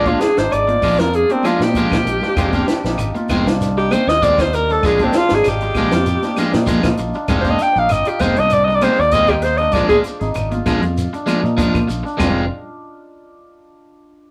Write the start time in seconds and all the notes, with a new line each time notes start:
Already playing: A#1 F4
0.05 G#3 D4 F4, kick, closed hi-hat, high conga
0.20 G#4, muted clean electric guitar stroke, snare, closed hi-hat
0.37 G#1 D#4 C5, snare, closed hi-hat
0.51 G#1 D5, muted clean electric guitar stroke, closed hi-hat, claves
0.68 F4, muted clean electric guitar stroke, closed hi-hat, high conga
0.82 A#1 F3 G#3 D4 F4, kick, open hi-hat, high conga, low conga, claves
0.98 F2 F4 A#4, muted clean electric guitar stroke, snare, closed hi-hat
1.13 G#4, closed hi-hat
1.29 C4 D4, muted clean electric guitar stroke, closed hi-hat, high conga
1.43 F3 G#3 D4 F4, snare, closed hi-hat, high conga, claves
1.60 A#2 D#4 G4, muted clean electric guitar stroke, snare
1.73 F3 G#3 D4 F4, kick, closed hi-hat, high conga
1.90 A#2 F4, kick, snare, closed hi-hat, low conga, claves
2.05 A#1, muted clean electric guitar stroke, closed hi-hat, low conga
2.21 D4, muted clean electric guitar stroke, snare, low conga
2.36 F1 D#3 G#3 C4 F4, kick, closed hi-hat, low conga, claves, shekere
2.53 G#3 C4 D4 F4, kick, closed hi-hat, high conga, shekere
2.67 muted clean electric guitar stroke, snare, closed hi-hat, shekere
2.84 A#1 D#4, snare, shekere
2.98 G#1, muted clean electric guitar stroke, closed hi-hat, claves, shekere
3.15 F4, muted clean electric guitar stroke, closed hi-hat, high conga, shekere
3.29 F1 D#3 G#3 C4 F4, kick, snare, closed hi-hat, high conga, low conga, claves, shekere
3.46 C2 D4, muted clean electric guitar stroke, snare, closed hi-hat, shekere
3.61 snare, closed hi-hat, shekere
3.77 D#4 G4, muted clean electric guitar stroke, shekere
3.91 D#3 C4 C5, muted clean electric guitar stroke, closed hi-hat, high conga, claves, shekere
4.07 D#2 F4 D#5, muted clean electric guitar stroke, snare, shekere
4.22 D#3 G#3 C4 F4 D5, kick, closed hi-hat, high conga, shekere
4.38 D#4 C5, kick, snare, closed hi-hat, claves, shekere
4.53 A#4, muted clean electric guitar stroke, closed hi-hat, shekere
4.69 D4 A4, muted clean electric guitar stroke, closed hi-hat, shekere
4.83 A#1 F3 G#3 D4 F4 G#4, kick, closed hi-hat, low conga, claves, shekere
4.99 G#3 D4 F4, kick, closed hi-hat, high conga, shekere
5.04 C4
5.13 muted clean electric guitar stroke, snare, closed hi-hat, shekere
5.17 F4
5.29 G#1 D#4, snare, closed hi-hat, shekere
5.34 G#4
5.44 G#1, muted clean electric guitar stroke, snare, closed hi-hat, claves, shekere
5.48 G4
5.61 F4, muted clean electric guitar stroke, closed hi-hat, shekere
5.75 A#1 F3 G#3 D4 F4, kick, closed hi-hat, high conga, low conga, claves, shekere
5.91 F2 F4, muted clean electric guitar stroke, snare, closed hi-hat, low conga, shekere
6.06 closed hi-hat, shekere
6.22 D4, muted clean electric guitar stroke, snare, closed hi-hat, high conga, shekere
6.37 F3 G#3 D4 F4, snare, closed hi-hat, high conga, claves, shekere
6.52 A#2 D#4, muted clean electric guitar stroke, snare, shekere
6.66 F3 G#3 D4 F4, kick, closed hi-hat, high conga, shekere
6.83 A#2 F4, kick, snare, closed hi-hat, claves, shekere
6.97 A#1, muted clean electric guitar stroke, closed hi-hat, shekere
7.14 D4, muted clean electric guitar stroke, shekere
7.28 F1 D#3 G#3 C4 F4, kick, closed hi-hat, low conga, claves, shekere
7.41 C4 D4 F4 C5, kick, closed hi-hat
7.46 G#3, high conga, shekere
7.50 D#5
7.58 muted clean electric guitar stroke, closed hi-hat, shekere
7.62 G5
7.76 A#1 D#4 F5, shekere
7.89 G#1 D#5, muted clean electric guitar stroke, closed hi-hat, claves, shekere
8.05 F4 G4, muted clean electric guitar stroke, closed hi-hat, shekere
8.19 F1 D#3 G#3 C4 F4 C5, kick, closed hi-hat, high conga, low conga, claves, shekere
8.36 C2 D4 D#5, muted clean electric guitar stroke, closed hi-hat, low conga, shekere
8.50 closed hi-hat, shekere
8.54 D5
8.65 D#4 D#5, muted clean electric guitar stroke
8.69 shekere
8.76 D5
8.81 D#3 G#3 C4 F4 C5, closed hi-hat, high conga, claves, shekere
8.98 D#2 F4 D5, muted clean electric guitar stroke, shekere
9.11 D#3 G#3 C4 F4 D#5, kick, closed hi-hat, high conga, shekere
9.27 D#4 G4, kick, closed hi-hat, claves, shekere
9.42 C5, muted clean electric guitar stroke, closed hi-hat, shekere
9.57 D4 D#5, closed hi-hat
9.62 muted clean electric guitar stroke, shekere
9.72 A#1 F3 G#3 D5, kick, closed hi-hat, low conga, claves, shekere
9.76 D4 F4
9.89 G#3 D4 F4 G#4, kick, closed hi-hat, high conga, shekere
10.04 muted clean electric guitar stroke, closed hi-hat, shekere
10.21 G#1 D#4, closed hi-hat, shekere
10.34 G#1, muted clean electric guitar stroke, closed hi-hat, claves, shekere
10.51 F4, muted clean electric guitar stroke, closed hi-hat, high conga, shekere
10.66 A#1 F3 G#3 D4 F4, kick, closed hi-hat, high conga, low conga, claves, shekere
10.81 F2 F4, muted clean electric guitar stroke, closed hi-hat, shekere
10.97 closed hi-hat, shekere
11.13 D4, muted clean electric guitar stroke, closed hi-hat, shekere
11.26 F3 G#3 D4 F4, closed hi-hat, high conga, claves, shekere
11.42 A#2 D#4, muted clean electric guitar stroke, shekere
11.57 F3 D4 F4, muted clean electric guitar stroke, kick, closed hi-hat, high conga, shekere
11.74 A#2 F4, kick, closed hi-hat, claves, shekere
11.88 A#1, muted clean electric guitar stroke, closed hi-hat, shekere
12.03 D4, muted clean electric guitar stroke, shekere
12.17 F1 D#3 G#3 C4 F4, kick, floor tom, low conga, claves, shekere